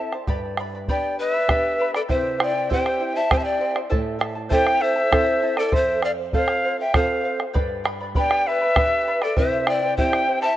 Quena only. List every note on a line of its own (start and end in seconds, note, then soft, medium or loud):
0.00 0.13 A5 medium
0.91 1.18 G5 medium
1.20 1.31 D#5 loud
1.31 1.91 E5 loud
1.95 2.01 D5 medium
2.10 2.43 E5 medium
2.42 2.71 G5 loud
2.72 3.18 G5 loud
3.17 3.33 A5 loud
3.32 3.39 G5 loud
3.37 3.45 A5 medium
3.44 3.76 G5 medium
4.52 4.83 G5 loud
4.81 5.59 E5 loud
5.58 5.75 D5 loud
5.74 6.04 E5 medium
6.04 6.11 F5 medium
6.34 6.77 F5 medium
6.81 6.97 G5 medium
6.96 7.41 F5 medium
8.18 8.49 G5 loud
8.47 9.24 E5 loud
9.23 9.39 D5 medium
9.37 9.69 E5 medium
9.67 9.97 G5 loud
9.97 10.39 G5 loud
10.42 10.57 A5 medium